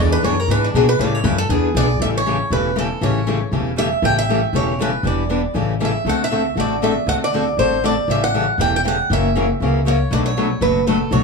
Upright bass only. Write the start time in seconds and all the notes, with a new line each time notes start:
Already playing: E2
0.23 F#2
0.48 G#2
0.74 B2
0.99 A2
1.24 F#2
1.49 E2
1.75 B1
1.99 A1
2.50 E1
3.01 A1
3.52 E1
4.02 A1
4.53 E1
5.03 E1
5.55 A1
6.05 D2
6.56 A1
7.07 D2
7.57 A1
8.08 A1
8.58 E1
9.10 F#1
9.60 C#2
10.11 B1
10.61 F#1
11.11 B1